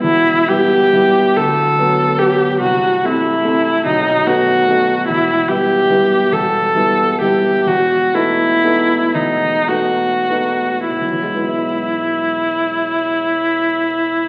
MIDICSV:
0, 0, Header, 1, 3, 480
1, 0, Start_track
1, 0, Key_signature, 1, "minor"
1, 0, Tempo, 904977
1, 16, Time_signature, 6, 3, 24, 8
1, 496, Tempo, 845070
1, 976, Tempo, 824176
1, 3376, Tempo, 855920
1, 3856, Tempo, 914634
1, 4336, Tempo, 972447
1, 4816, Tempo, 1047120
1, 5296, Tempo, 1212121
1, 5776, Tempo, 1142857
1, 7196, End_track
2, 0, Start_track
2, 0, Title_t, "Viola"
2, 0, Program_c, 0, 41
2, 14, Note_on_c, 0, 64, 56
2, 257, Note_on_c, 0, 67, 56
2, 265, Note_off_c, 0, 64, 0
2, 738, Note_on_c, 0, 69, 57
2, 746, Note_off_c, 0, 67, 0
2, 1213, Note_on_c, 0, 67, 52
2, 1222, Note_off_c, 0, 69, 0
2, 1454, Note_off_c, 0, 67, 0
2, 1457, Note_on_c, 0, 66, 50
2, 1716, Note_on_c, 0, 64, 46
2, 1725, Note_off_c, 0, 66, 0
2, 2186, Note_off_c, 0, 64, 0
2, 2189, Note_on_c, 0, 63, 47
2, 2426, Note_on_c, 0, 66, 55
2, 2434, Note_off_c, 0, 63, 0
2, 2895, Note_off_c, 0, 66, 0
2, 2898, Note_on_c, 0, 64, 48
2, 3129, Note_on_c, 0, 67, 56
2, 3138, Note_off_c, 0, 64, 0
2, 3614, Note_on_c, 0, 69, 54
2, 3623, Note_off_c, 0, 67, 0
2, 4093, Note_off_c, 0, 69, 0
2, 4098, Note_on_c, 0, 67, 49
2, 4339, Note_on_c, 0, 66, 52
2, 4346, Note_off_c, 0, 67, 0
2, 4571, Note_on_c, 0, 64, 46
2, 4579, Note_off_c, 0, 66, 0
2, 5046, Note_on_c, 0, 63, 42
2, 5053, Note_off_c, 0, 64, 0
2, 5294, Note_on_c, 0, 66, 39
2, 5300, Note_off_c, 0, 63, 0
2, 5763, Note_off_c, 0, 66, 0
2, 5765, Note_on_c, 0, 64, 33
2, 7196, Note_off_c, 0, 64, 0
2, 7196, End_track
3, 0, Start_track
3, 0, Title_t, "Grand piano"
3, 0, Program_c, 1, 0
3, 0, Control_c, 1, 64, 127
3, 17, Note_on_c, 1, 40, 39
3, 18, Note_on_c, 1, 28, 34
3, 25, Control_c, 1, 64, 0
3, 135, Control_c, 1, 64, 127
3, 252, Note_off_c, 1, 28, 0
3, 252, Note_off_c, 1, 40, 0
3, 263, Note_on_c, 1, 55, 27
3, 265, Note_on_c, 1, 59, 28
3, 268, Note_on_c, 1, 64, 28
3, 477, Note_off_c, 1, 55, 0
3, 478, Note_off_c, 1, 59, 0
3, 479, Note_off_c, 1, 64, 0
3, 491, Note_on_c, 1, 55, 29
3, 495, Note_on_c, 1, 59, 29
3, 497, Note_on_c, 1, 64, 31
3, 715, Note_off_c, 1, 55, 0
3, 717, Note_off_c, 1, 59, 0
3, 719, Note_off_c, 1, 64, 0
3, 740, Note_on_c, 1, 38, 41
3, 742, Note_on_c, 1, 26, 35
3, 749, Control_c, 1, 64, 0
3, 846, Control_c, 1, 64, 127
3, 969, Note_off_c, 1, 38, 0
3, 970, Note_off_c, 1, 26, 0
3, 978, Note_on_c, 1, 54, 28
3, 981, Note_on_c, 1, 59, 27
3, 983, Note_on_c, 1, 66, 29
3, 1195, Note_off_c, 1, 54, 0
3, 1196, Note_off_c, 1, 59, 0
3, 1197, Note_off_c, 1, 66, 0
3, 1213, Note_on_c, 1, 54, 26
3, 1215, Note_on_c, 1, 59, 26
3, 1218, Note_on_c, 1, 66, 31
3, 1439, Note_off_c, 1, 54, 0
3, 1440, Note_off_c, 1, 59, 0
3, 1442, Note_off_c, 1, 66, 0
3, 1456, Note_on_c, 1, 24, 33
3, 1456, Note_on_c, 1, 36, 37
3, 1475, Control_c, 1, 64, 0
3, 1567, Control_c, 1, 64, 127
3, 1700, Note_off_c, 1, 24, 0
3, 1700, Note_off_c, 1, 36, 0
3, 1709, Note_on_c, 1, 57, 24
3, 1711, Note_on_c, 1, 60, 27
3, 1714, Note_on_c, 1, 64, 28
3, 1926, Note_off_c, 1, 57, 0
3, 1927, Note_off_c, 1, 60, 0
3, 1929, Note_off_c, 1, 64, 0
3, 1944, Note_on_c, 1, 57, 25
3, 1950, Note_on_c, 1, 60, 27
3, 1954, Note_on_c, 1, 64, 28
3, 2160, Note_off_c, 1, 57, 0
3, 2163, Note_off_c, 1, 60, 0
3, 2165, Note_off_c, 1, 64, 0
3, 2184, Note_on_c, 1, 23, 34
3, 2184, Note_on_c, 1, 35, 38
3, 2196, Control_c, 1, 64, 0
3, 2281, Control_c, 1, 64, 127
3, 2419, Note_off_c, 1, 23, 0
3, 2419, Note_off_c, 1, 35, 0
3, 2423, Note_on_c, 1, 59, 26
3, 2424, Note_on_c, 1, 57, 26
3, 2428, Note_on_c, 1, 63, 28
3, 2643, Note_off_c, 1, 59, 0
3, 2644, Note_off_c, 1, 57, 0
3, 2646, Note_off_c, 1, 63, 0
3, 2663, Note_on_c, 1, 57, 26
3, 2667, Note_on_c, 1, 59, 26
3, 2668, Note_on_c, 1, 63, 27
3, 2877, Note_off_c, 1, 57, 0
3, 2879, Note_off_c, 1, 59, 0
3, 2880, Note_off_c, 1, 63, 0
3, 2904, Note_on_c, 1, 28, 33
3, 2906, Note_on_c, 1, 40, 34
3, 2914, Control_c, 1, 64, 0
3, 2995, Control_c, 1, 64, 127
3, 3130, Note_off_c, 1, 28, 0
3, 3131, Note_off_c, 1, 40, 0
3, 3140, Note_on_c, 1, 55, 25
3, 3141, Note_on_c, 1, 59, 27
3, 3146, Note_on_c, 1, 64, 28
3, 3355, Note_off_c, 1, 55, 0
3, 3355, Note_off_c, 1, 59, 0
3, 3358, Note_off_c, 1, 64, 0
3, 3375, Note_on_c, 1, 55, 27
3, 3376, Note_on_c, 1, 59, 27
3, 3382, Note_on_c, 1, 64, 29
3, 3590, Note_off_c, 1, 55, 0
3, 3590, Note_off_c, 1, 59, 0
3, 3593, Note_off_c, 1, 64, 0
3, 3610, Note_on_c, 1, 40, 34
3, 3612, Note_on_c, 1, 28, 33
3, 3847, Note_off_c, 1, 40, 0
3, 3849, Note_off_c, 1, 28, 0
3, 3856, Note_on_c, 1, 55, 25
3, 3857, Note_on_c, 1, 59, 26
3, 3859, Note_on_c, 1, 64, 28
3, 4071, Note_off_c, 1, 55, 0
3, 4072, Note_off_c, 1, 59, 0
3, 4073, Note_off_c, 1, 64, 0
3, 4094, Note_on_c, 1, 55, 26
3, 4095, Note_on_c, 1, 59, 26
3, 4099, Note_on_c, 1, 64, 30
3, 4316, Note_off_c, 1, 55, 0
3, 4316, Note_off_c, 1, 59, 0
3, 4318, Note_off_c, 1, 64, 0
3, 4331, Note_on_c, 1, 28, 30
3, 4332, Note_on_c, 1, 40, 36
3, 4347, Control_c, 1, 64, 0
3, 4451, Control_c, 1, 64, 127
3, 4563, Note_off_c, 1, 28, 0
3, 4563, Note_off_c, 1, 40, 0
3, 4566, Note_on_c, 1, 57, 25
3, 4567, Note_on_c, 1, 59, 23
3, 4568, Note_on_c, 1, 63, 27
3, 4793, Note_off_c, 1, 57, 0
3, 4793, Note_off_c, 1, 59, 0
3, 4794, Note_off_c, 1, 63, 0
3, 4814, Note_on_c, 1, 59, 25
3, 4815, Note_on_c, 1, 57, 26
3, 4817, Note_on_c, 1, 63, 28
3, 5028, Note_off_c, 1, 59, 0
3, 5029, Note_off_c, 1, 57, 0
3, 5030, Note_off_c, 1, 63, 0
3, 5046, Note_on_c, 1, 28, 32
3, 5046, Note_on_c, 1, 40, 29
3, 5288, Note_off_c, 1, 28, 0
3, 5288, Note_off_c, 1, 40, 0
3, 5293, Note_on_c, 1, 57, 22
3, 5296, Note_on_c, 1, 59, 22
3, 5297, Note_on_c, 1, 63, 24
3, 5519, Note_off_c, 1, 57, 0
3, 5521, Note_off_c, 1, 59, 0
3, 5522, Note_off_c, 1, 63, 0
3, 5536, Note_on_c, 1, 57, 21
3, 5537, Note_on_c, 1, 59, 21
3, 5540, Note_on_c, 1, 63, 23
3, 5760, Note_off_c, 1, 57, 0
3, 5761, Note_off_c, 1, 59, 0
3, 5762, Note_off_c, 1, 63, 0
3, 5776, Note_on_c, 1, 28, 26
3, 5786, Control_c, 1, 64, 0
3, 5821, Note_on_c, 1, 35, 23
3, 5867, Note_on_c, 1, 52, 22
3, 5892, Control_c, 1, 64, 127
3, 5914, Note_on_c, 1, 56, 22
3, 5960, Note_on_c, 1, 59, 22
3, 6006, Note_on_c, 1, 64, 23
3, 7196, Note_off_c, 1, 28, 0
3, 7196, Note_off_c, 1, 35, 0
3, 7196, Note_off_c, 1, 52, 0
3, 7196, Note_off_c, 1, 56, 0
3, 7196, Note_off_c, 1, 59, 0
3, 7196, Note_off_c, 1, 64, 0
3, 7196, End_track
0, 0, End_of_file